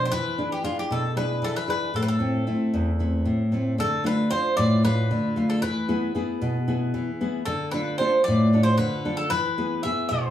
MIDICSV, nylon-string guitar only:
0, 0, Header, 1, 2, 480
1, 0, Start_track
1, 0, Tempo, 525394
1, 105, Time_signature, 7, 3, 24, 8
1, 9413, End_track
2, 0, Start_track
2, 0, Title_t, "Nylon-string guitar"
2, 0, Program_c, 0, 24
2, 0, Note_on_c, 0, 47, 60
2, 98, Note_off_c, 0, 47, 0
2, 118, Note_on_c, 0, 52, 67
2, 349, Note_on_c, 0, 62, 46
2, 355, Note_on_c, 0, 68, 53
2, 356, Note_on_c, 0, 64, 44
2, 571, Note_off_c, 0, 62, 0
2, 577, Note_off_c, 0, 52, 0
2, 577, Note_off_c, 0, 64, 0
2, 579, Note_off_c, 0, 68, 0
2, 582, Note_on_c, 0, 62, 44
2, 589, Note_on_c, 0, 68, 51
2, 591, Note_on_c, 0, 64, 44
2, 828, Note_on_c, 0, 47, 70
2, 967, Note_off_c, 0, 62, 0
2, 971, Note_off_c, 0, 64, 0
2, 972, Note_off_c, 0, 68, 0
2, 1061, Note_on_c, 0, 62, 45
2, 1066, Note_on_c, 0, 68, 50
2, 1067, Note_on_c, 0, 64, 43
2, 1292, Note_off_c, 0, 47, 0
2, 1296, Note_on_c, 0, 52, 61
2, 1448, Note_off_c, 0, 62, 0
2, 1449, Note_off_c, 0, 64, 0
2, 1450, Note_off_c, 0, 68, 0
2, 1529, Note_on_c, 0, 62, 46
2, 1535, Note_on_c, 0, 64, 45
2, 1536, Note_on_c, 0, 68, 44
2, 1728, Note_off_c, 0, 62, 0
2, 1730, Note_off_c, 0, 64, 0
2, 1732, Note_off_c, 0, 68, 0
2, 1766, Note_off_c, 0, 52, 0
2, 1771, Note_on_c, 0, 45, 60
2, 2000, Note_on_c, 0, 57, 44
2, 2011, Note_on_c, 0, 60, 45
2, 2011, Note_on_c, 0, 64, 54
2, 2244, Note_off_c, 0, 45, 0
2, 2245, Note_off_c, 0, 57, 0
2, 2245, Note_off_c, 0, 60, 0
2, 2249, Note_off_c, 0, 64, 0
2, 2255, Note_on_c, 0, 57, 47
2, 2258, Note_on_c, 0, 60, 43
2, 2260, Note_on_c, 0, 64, 53
2, 2499, Note_on_c, 0, 40, 70
2, 2644, Note_off_c, 0, 57, 0
2, 2644, Note_off_c, 0, 60, 0
2, 2646, Note_off_c, 0, 64, 0
2, 2735, Note_on_c, 0, 57, 41
2, 2742, Note_on_c, 0, 60, 37
2, 2743, Note_on_c, 0, 64, 48
2, 2968, Note_off_c, 0, 40, 0
2, 2973, Note_on_c, 0, 45, 58
2, 3124, Note_off_c, 0, 57, 0
2, 3126, Note_off_c, 0, 60, 0
2, 3128, Note_off_c, 0, 64, 0
2, 3214, Note_on_c, 0, 57, 45
2, 3225, Note_on_c, 0, 60, 41
2, 3231, Note_on_c, 0, 64, 51
2, 3411, Note_off_c, 0, 57, 0
2, 3418, Note_off_c, 0, 60, 0
2, 3419, Note_off_c, 0, 64, 0
2, 3445, Note_off_c, 0, 45, 0
2, 3457, Note_on_c, 0, 50, 65
2, 3690, Note_on_c, 0, 57, 50
2, 3694, Note_on_c, 0, 62, 48
2, 3699, Note_on_c, 0, 65, 53
2, 3923, Note_off_c, 0, 57, 0
2, 3927, Note_off_c, 0, 50, 0
2, 3928, Note_off_c, 0, 62, 0
2, 3934, Note_on_c, 0, 57, 48
2, 3935, Note_off_c, 0, 65, 0
2, 3939, Note_on_c, 0, 62, 46
2, 3946, Note_on_c, 0, 65, 55
2, 4186, Note_on_c, 0, 45, 78
2, 4323, Note_off_c, 0, 57, 0
2, 4326, Note_off_c, 0, 62, 0
2, 4330, Note_off_c, 0, 65, 0
2, 4415, Note_on_c, 0, 57, 47
2, 4422, Note_on_c, 0, 62, 43
2, 4426, Note_on_c, 0, 65, 52
2, 4651, Note_off_c, 0, 45, 0
2, 4666, Note_on_c, 0, 50, 64
2, 4803, Note_off_c, 0, 57, 0
2, 4807, Note_off_c, 0, 62, 0
2, 4810, Note_off_c, 0, 65, 0
2, 4897, Note_on_c, 0, 57, 49
2, 4904, Note_on_c, 0, 62, 39
2, 4909, Note_on_c, 0, 65, 51
2, 5093, Note_off_c, 0, 57, 0
2, 5095, Note_off_c, 0, 62, 0
2, 5099, Note_off_c, 0, 65, 0
2, 5131, Note_off_c, 0, 50, 0
2, 5148, Note_on_c, 0, 52, 68
2, 5376, Note_on_c, 0, 59, 49
2, 5380, Note_on_c, 0, 64, 52
2, 5381, Note_on_c, 0, 68, 59
2, 5605, Note_off_c, 0, 59, 0
2, 5612, Note_off_c, 0, 52, 0
2, 5613, Note_off_c, 0, 68, 0
2, 5614, Note_off_c, 0, 64, 0
2, 5616, Note_on_c, 0, 59, 53
2, 5623, Note_on_c, 0, 64, 47
2, 5626, Note_on_c, 0, 68, 53
2, 5861, Note_on_c, 0, 47, 74
2, 6003, Note_off_c, 0, 59, 0
2, 6008, Note_off_c, 0, 68, 0
2, 6009, Note_off_c, 0, 64, 0
2, 6099, Note_on_c, 0, 59, 51
2, 6101, Note_on_c, 0, 64, 43
2, 6107, Note_on_c, 0, 68, 51
2, 6328, Note_off_c, 0, 47, 0
2, 6340, Note_on_c, 0, 52, 65
2, 6485, Note_off_c, 0, 64, 0
2, 6486, Note_off_c, 0, 59, 0
2, 6490, Note_off_c, 0, 68, 0
2, 6584, Note_on_c, 0, 59, 53
2, 6588, Note_on_c, 0, 68, 54
2, 6589, Note_on_c, 0, 64, 42
2, 6776, Note_off_c, 0, 59, 0
2, 6778, Note_off_c, 0, 68, 0
2, 6779, Note_off_c, 0, 64, 0
2, 6807, Note_off_c, 0, 52, 0
2, 6824, Note_on_c, 0, 50, 64
2, 7067, Note_on_c, 0, 62, 51
2, 7072, Note_on_c, 0, 65, 51
2, 7074, Note_on_c, 0, 69, 57
2, 7290, Note_off_c, 0, 50, 0
2, 7304, Note_off_c, 0, 62, 0
2, 7305, Note_off_c, 0, 65, 0
2, 7310, Note_off_c, 0, 69, 0
2, 7314, Note_on_c, 0, 62, 54
2, 7318, Note_on_c, 0, 65, 46
2, 7321, Note_on_c, 0, 69, 53
2, 7563, Note_on_c, 0, 45, 78
2, 7694, Note_off_c, 0, 62, 0
2, 7695, Note_off_c, 0, 65, 0
2, 7698, Note_off_c, 0, 69, 0
2, 7794, Note_on_c, 0, 62, 50
2, 7800, Note_on_c, 0, 65, 44
2, 7802, Note_on_c, 0, 69, 52
2, 8019, Note_off_c, 0, 45, 0
2, 8026, Note_on_c, 0, 50, 67
2, 8175, Note_off_c, 0, 62, 0
2, 8176, Note_off_c, 0, 65, 0
2, 8179, Note_off_c, 0, 69, 0
2, 8268, Note_on_c, 0, 62, 43
2, 8272, Note_on_c, 0, 65, 44
2, 8272, Note_on_c, 0, 69, 55
2, 8458, Note_off_c, 0, 62, 0
2, 8460, Note_off_c, 0, 69, 0
2, 8461, Note_off_c, 0, 65, 0
2, 8490, Note_off_c, 0, 50, 0
2, 8512, Note_on_c, 0, 52, 64
2, 8750, Note_on_c, 0, 59, 51
2, 8754, Note_on_c, 0, 68, 52
2, 8755, Note_on_c, 0, 64, 43
2, 8973, Note_off_c, 0, 52, 0
2, 8990, Note_off_c, 0, 59, 0
2, 8993, Note_off_c, 0, 64, 0
2, 8994, Note_off_c, 0, 68, 0
2, 8999, Note_on_c, 0, 59, 50
2, 9005, Note_on_c, 0, 68, 56
2, 9006, Note_on_c, 0, 64, 47
2, 9236, Note_on_c, 0, 47, 71
2, 9377, Note_off_c, 0, 59, 0
2, 9380, Note_off_c, 0, 64, 0
2, 9380, Note_off_c, 0, 68, 0
2, 9413, Note_off_c, 0, 47, 0
2, 9413, End_track
0, 0, End_of_file